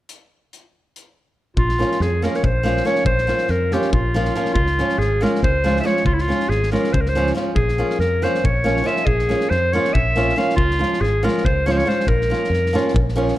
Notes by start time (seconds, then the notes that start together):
0.09 closed hi-hat
0.53 closed hi-hat
0.96 closed hi-hat
1.56 A#1 F4, kick
1.69 snare
1.78 F3 A#3 C#4 F4, snare
1.92 snare
2.00 F2 G#4, snare
2.22 F3 A#3 C#4 F4 A#4, snare
2.34 C#5, snare
2.43 A#1 C5, kick
2.63 F3 A#3 C#4 F4, snare
2.77 snare
2.85 F3 A#3 C#4 F4 C#5, snare
2.96 snare
3.05 A#1 C5, kick
3.18 snare
3.27 F3 A#3 C#4 F4, snare
3.38 snare
3.47 F2 A#4, snare
3.71 F3 A#3 C#4 F4 G4, snare
3.82 snare
3.92 A#1 F4, kick
4.14 F3 A#3 C#4 F4, snare
4.25 snare
4.35 F3 A#3 C#4 F4, snare
4.45 snare
4.54 C#2 F4, kick
4.67 snare
4.79 F3 G#3 C#4 F4, snare
4.89 snare
4.98 G#1 G#4, snare
5.21 F3 G#3 C#4 F4 A#4
5.25 snare
5.35 snare
5.42 C#2 C5, kick
5.64 F3 G#3 C#4 F4, snare
5.76 E5, snare
5.83 F3 G#3 C#4 F4 C#5, snare
5.97 snare
6.05 C#2 F4, kick
6.14 E4
6.19 F4, snare
6.28 F3 G#3 C#4 F4, snare
6.40 snare
6.49 G#1 G#4, snare
6.63 snare
6.72 F3 G#3 C#4 F4 A#4, snare
6.84 snare
6.93 C#2 C5, kick
7.00 A#4
7.06 C5, snare
7.15 F3 G#3 C#4 F4, snare
7.27 snare
7.35 F3 G#3 C#4 F4, snare
7.55 A#1 G#4, kick
7.69 snare
7.78 F3 A#3 C#4 F4
7.90 snare
7.99 F2 A#4, snare
8.22 F3 A#3 C#4 F4 C5, snare
8.35 snare
8.44 A#1 C#5, kick
8.64 F3 A#3 C#4 F4, snare
8.77 snare
8.84 F3 A#3 C#4 F4 E5, snare
8.96 snare
9.06 A#1 G#4, kick
9.19 snare
9.29 F3 A#3 C#4 F4, snare
9.40 snare
9.49 F2 C5, snare
9.73 F3 A#3 C#4 F4 C#5
9.85 snare
9.93 A#1 E5, kick
10.16 F3 A#3 C#4 F4, snare
10.29 snare
10.36 F3 A#3 C#4 F4 F5, snare
10.50 snare
10.56 C#2 F4, kick
10.71 snare
10.79 F3 G#3 C#4 F4, snare
10.93 snare
11.01 G#1 G#4, snare
11.23 F3 G#3 C#4 F4 A#4
11.28 snare
11.38 snare
11.44 C#2 C5, kick
11.66 F3 G#3 C#4 F4 C#5, snare
11.71 C5
11.77 C#5, snare
11.85 F3 G#3 C#4 F4 C5
11.90 snare
12.00 snare
12.07 A#1 A#4, kick
12.21 snare
12.30 F3 A#3 C#4 F4, snare
12.44 snare
12.50 F2, snare
12.66 snare
12.73 F3 A#3 C#4 F4
12.77 snare
12.88 snare
12.94 A#1, kick
13.09 snare
13.16 F3 A#3 C#4 F4
13.28 snare